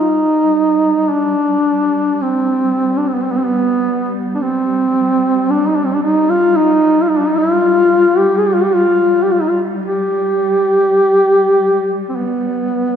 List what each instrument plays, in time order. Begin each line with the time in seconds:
Already playing: cello section G3, duduk D#4
1.10 duduk D4
2.22 duduk C4
2.98 duduk D4
3.08 duduk C4
3.14 duduk B3
3.23 duduk C4
3.32 duduk B3
3.38 duduk C4
3.46 duduk B3
4.34 duduk D4
4.42 duduk C4
5.50 duduk D4
5.67 duduk D#4
5.76 duduk D4
5.85 duduk C4
5.94 duduk D4
6.03 duduk D#4
6.30 duduk F4
6.56 duduk D#4
7.02 duduk F4
7.09 duduk D#4
7.18 duduk D4
7.28 duduk D#4
7.38 duduk F4
8.18 duduk G4
8.38 duduk G#4
8.47 duduk G4
8.55 duduk F4
8.64 duduk G4
8.75 duduk F4
9.23 duduk G4
9.33 duduk F4
9.41 duduk D#4
9.50 duduk F4
9.85 duduk G4
12.09 duduk C4
12.16 duduk B3